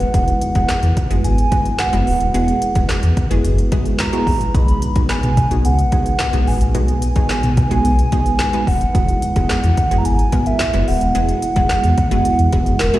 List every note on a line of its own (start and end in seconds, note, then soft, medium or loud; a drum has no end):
0.00 8.91 G#3 medium
0.00 0.10 D#4 medium
0.00 2.30 F#4 medium
0.00 8.91 B4 medium
0.00 0.41 F#5 loud
0.00 closed hi-hat soft
0.14 0.32 E1 loud
0.14 0.36 G#3 medium
0.14 0.36 B3 medium
0.14 0.36 E4 medium
0.14 4.51 E4 medium
0.14 0.36 F#4 medium
0.14 0.36 G#4 medium
0.14 kick loud
0.14 closed hi-hat medium
0.28 closed hi-hat soft
0.42 0.93 F#5 loud
0.42 closed hi-hat medium
0.55 0.64 E1 loud
0.55 0.85 G#3 medium
0.55 0.85 B3 medium
0.55 0.85 E4 medium
0.55 0.85 F#4 medium
0.55 0.85 G#4 medium
0.55 kick loud
0.55 closed hi-hat medium
0.69 0.75 E2 medium
0.69 snare medium
0.69 clap loud
0.69 closed hi-hat medium
0.83 0.92 E2 medium
0.83 closed hi-hat soft
0.97 kick loud
0.97 closed hi-hat medium
1.10 1.19 F#1 medium
1.10 1.32 G#3 medium
1.10 1.33 B3 medium
1.10 1.33 E4 medium
1.10 1.33 F#4 medium
1.10 1.33 G#4 medium
1.10 closed hi-hat medium
1.24 1.42 G#1 loud
1.24 1.81 G#5 loud
1.24 closed hi-hat medium
1.38 closed hi-hat medium
1.52 1.74 G#3 medium
1.52 1.74 B3 medium
1.52 1.74 E4 medium
1.52 1.74 F#4 medium
1.52 1.74 B4 medium
1.52 kick loud
1.52 closed hi-hat medium
1.66 closed hi-hat medium
1.79 2.34 F#5 loud
1.79 snare loud
1.79 clap loud
1.79 closed hi-hat medium
1.93 2.02 F#1 medium
1.93 2.15 G#3 medium
1.93 2.15 B3 medium
1.93 2.15 E4 medium
1.93 2.15 F#4 medium
1.93 2.15 B4 medium
1.93 closed hi-hat soft
2.07 2.16 D1 loud
2.07 open hi-hat medium
2.21 2.29 D#1 medium
2.21 closed hi-hat medium
2.34 2.52 E1 loud
2.34 2.56 G#3 medium
2.34 2.56 B3 medium
2.34 2.56 E4 medium
2.34 2.57 F#4 medium
2.34 4.52 G#4 medium
2.34 2.57 G#4 medium
2.34 2.86 F#5 medium
2.34 closed hi-hat medium
2.48 closed hi-hat soft
2.62 closed hi-hat medium
2.75 2.85 E1 loud
2.75 3.05 G#3 medium
2.75 3.05 B3 medium
2.75 3.05 E4 medium
2.75 3.05 F#4 medium
2.75 3.05 G#4 medium
2.75 kick loud
2.75 closed hi-hat medium
2.89 2.95 E2 medium
2.89 snare medium
2.89 clap loud
2.89 closed hi-hat medium
3.03 3.12 E2 loud
3.03 closed hi-hat soft
3.17 kick loud
3.17 closed hi-hat medium
3.31 3.39 F#1 medium
3.31 3.53 G#3 medium
3.31 3.53 B3 medium
3.31 3.53 E4 medium
3.31 3.53 F#4 medium
3.31 3.53 G#4 loud
3.31 closed hi-hat medium
3.44 3.62 F#1 loud
3.44 closed hi-hat medium
3.58 closed hi-hat medium
3.72 3.94 G#3 medium
3.72 3.94 B3 medium
3.72 3.94 E4 medium
3.72 3.94 F#4 medium
3.72 3.94 G#4 loud
3.72 kick loud
3.72 closed hi-hat medium
3.86 closed hi-hat soft
3.99 4.56 A#5 loud
3.99 snare loud
3.99 clap loud
3.99 closed hi-hat loud
4.13 4.35 G#3 medium
4.13 4.35 B3 medium
4.13 4.35 E4 medium
4.13 4.35 F#4 medium
4.13 4.35 G#4 medium
4.13 closed hi-hat soft
4.27 4.45 A#1 medium
4.27 kick medium
4.27 open hi-hat medium
4.41 closed hi-hat soft
4.54 4.72 B1 loud
4.54 4.76 G#3 medium
4.54 4.77 B3 medium
4.54 4.77 D#4 medium
4.54 8.91 D#4 medium
4.54 11.11 F#4 medium
4.54 4.77 F#4 medium
4.54 4.77 G#4 medium
4.54 5.09 B5 loud
4.54 kick loud
4.54 closed hi-hat medium
4.68 closed hi-hat soft
4.82 closed hi-hat medium
4.96 5.05 B1 loud
4.96 5.25 G#3 medium
4.96 5.25 B3 medium
4.96 5.25 D#4 medium
4.96 5.25 F#4 medium
4.96 5.25 G#4 medium
4.96 kick loud
4.96 closed hi-hat medium
5.09 5.15 B2 medium
5.09 5.67 G#5 loud
5.09 snare loud
5.09 clap loud
5.09 closed hi-hat medium
5.23 5.32 B2 loud
5.23 closed hi-hat soft
5.37 kick loud
5.37 closed hi-hat medium
5.51 5.66 B1 medium
5.51 5.73 G#3 medium
5.51 5.73 B3 medium
5.51 5.73 D#4 medium
5.51 5.73 F#4 medium
5.51 5.73 G#4 medium
5.51 closed hi-hat medium
5.65 5.82 C#2 loud
5.65 6.49 F#5 loud
5.65 closed hi-hat medium
5.79 closed hi-hat medium
5.92 6.14 G#3 medium
5.92 6.14 B3 medium
5.92 6.14 D#4 medium
5.92 6.14 F#4 medium
5.92 6.14 G#4 medium
5.92 kick loud
5.92 closed hi-hat medium
6.06 closed hi-hat medium
6.19 snare loud
6.19 clap loud
6.19 closed hi-hat loud
6.33 6.42 B1 medium
6.33 6.55 G#3 medium
6.33 6.55 B3 medium
6.33 6.56 D#4 medium
6.33 6.56 F#4 medium
6.33 6.56 G#4 medium
6.33 closed hi-hat soft
6.47 6.56 A1 medium
6.47 8.69 G#5 loud
6.47 open hi-hat medium
6.61 6.70 A#1 loud
6.61 closed hi-hat soft
6.74 6.92 B1 loud
6.74 6.97 G#3 medium
6.74 6.97 B3 medium
6.74 6.97 D#4 medium
6.74 6.97 F#4 medium
6.74 6.97 G#4 medium
6.74 closed hi-hat medium
6.88 closed hi-hat soft
7.02 closed hi-hat medium
7.16 7.25 B1 loud
7.16 7.45 G#3 medium
7.16 7.45 B3 medium
7.16 7.45 D#4 medium
7.16 7.45 F#4 medium
7.16 7.46 G#4 loud
7.16 kick loud
7.16 closed hi-hat soft
7.29 7.35 B2 soft
7.29 snare medium
7.29 clap loud
7.29 closed hi-hat medium
7.43 7.52 B2 loud
7.43 closed hi-hat soft
7.57 kick loud
7.57 closed hi-hat medium
7.71 7.80 B1 medium
7.71 7.93 G#3 loud
7.71 7.93 B3 medium
7.71 7.93 D#4 medium
7.71 7.93 F#4 medium
7.71 7.93 G#4 loud
7.71 closed hi-hat medium
7.85 8.03 B1 loud
7.85 closed hi-hat medium
7.99 closed hi-hat soft
8.12 8.34 G#3 medium
8.12 8.34 B3 medium
8.12 8.34 D#4 medium
8.12 8.34 F#4 medium
8.12 8.35 G#4 loud
8.12 kick loud
8.12 closed hi-hat medium
8.26 closed hi-hat medium
8.39 snare loud
8.39 clap loud
8.39 closed hi-hat loud
8.53 8.76 G#3 medium
8.53 8.76 B3 medium
8.53 8.76 D#4 medium
8.53 8.76 F#4 medium
8.53 8.76 B4 medium
8.53 closed hi-hat soft
8.67 8.85 D#1 medium
8.67 9.22 F#5 loud
8.67 kick medium
8.67 open hi-hat medium
8.81 closed hi-hat soft
8.94 9.13 E1 loud
8.94 9.17 G#3 medium
8.94 12.99 G#3 medium
8.94 9.17 B3 medium
8.94 12.99 B3 medium
8.94 12.99 E4 medium
8.94 9.17 E4 medium
8.94 9.17 F#4 medium
8.94 9.17 G#4 medium
8.94 kick loud
8.94 closed hi-hat medium
9.09 closed hi-hat soft
9.22 10.00 F#5 loud
9.22 closed hi-hat medium
9.36 9.45 E1 loud
9.36 9.66 G#3 medium
9.36 9.66 B3 medium
9.36 9.66 E4 medium
9.36 9.66 F#4 medium
9.36 9.66 G#4 medium
9.36 kick medium
9.36 closed hi-hat medium
9.49 9.55 E2 medium
9.49 snare medium
9.49 clap loud
9.49 closed hi-hat medium
9.64 9.73 E2 loud
9.64 closed hi-hat soft
9.77 kick loud
9.77 closed hi-hat medium
9.91 10.00 F#1 medium
9.91 10.13 G#3 medium
9.91 10.13 B3 medium
9.91 10.13 E4 medium
9.91 10.13 F#4 medium
9.91 10.13 G#4 medium
9.91 closed hi-hat medium
9.98 10.07 A#5 medium
10.05 10.23 G#1 medium
10.05 10.48 G#5 loud
10.05 closed hi-hat medium
10.19 closed hi-hat soft
10.32 10.54 G#3 medium
10.32 10.55 B3 medium
10.32 10.55 E4 medium
10.32 10.55 F#4 medium
10.32 10.55 A#4 medium
10.32 kick loud
10.32 closed hi-hat medium
10.46 10.89 E5 loud
10.46 closed hi-hat medium
10.59 snare loud
10.59 clap loud
10.59 closed hi-hat loud
10.74 10.83 F#1 medium
10.74 10.96 G#3 medium
10.74 10.96 B3 medium
10.74 10.96 E4 medium
10.74 10.96 F#4 medium
10.74 10.96 B4 medium
10.74 closed hi-hat soft
10.88 10.96 D1 loud
10.88 12.80 F#5 loud
10.88 open hi-hat medium
11.01 11.10 D#1 medium
11.01 closed hi-hat soft
11.15 11.33 E1 loud
11.15 11.37 G#3 medium
11.15 11.37 B3 medium
11.15 11.37 E4 medium
11.15 11.37 F#4 medium
11.15 12.99 G#4 medium
11.15 11.37 G#4 medium
11.15 closed hi-hat medium
11.29 closed hi-hat soft
11.42 closed hi-hat medium
11.56 11.65 E1 medium
11.56 11.86 G#3 medium
11.56 11.86 B3 medium
11.56 11.86 E4 medium
11.56 11.86 F#4 medium
11.56 11.86 G#4 loud
11.56 kick medium
11.56 closed hi-hat medium
11.69 11.76 E2 soft
11.69 snare medium
11.69 clap loud
11.69 closed hi-hat medium
11.84 11.93 E2 loud
11.84 closed hi-hat medium
11.98 kick loud
11.98 closed hi-hat medium
12.11 12.20 F#1 medium
12.11 12.33 G#3 medium
12.11 12.33 B3 medium
12.11 12.33 E4 medium
12.11 12.34 F#4 medium
12.11 12.34 G#4 loud
12.11 closed hi-hat medium
12.25 closed hi-hat medium
12.39 12.48 E2 loud
12.39 closed hi-hat medium
12.53 12.62 E1 loud
12.53 12.75 G#3 medium
12.53 12.75 B3 medium
12.53 12.75 E4 medium
12.53 12.75 F#4 medium
12.53 12.75 G#4 loud
12.53 kick medium
12.53 closed hi-hat medium
12.66 12.75 F#1 loud
12.66 closed hi-hat soft
12.79 12.89 E1 loud
12.79 12.99 A#4 medium
12.79 snare loud
12.79 clap loud
12.79 closed hi-hat loud
12.94 12.99 G#3 medium
12.94 12.99 B3 medium
12.94 12.99 E4 medium
12.94 12.99 F#4 medium
12.94 12.99 G#4 loud
12.94 closed hi-hat soft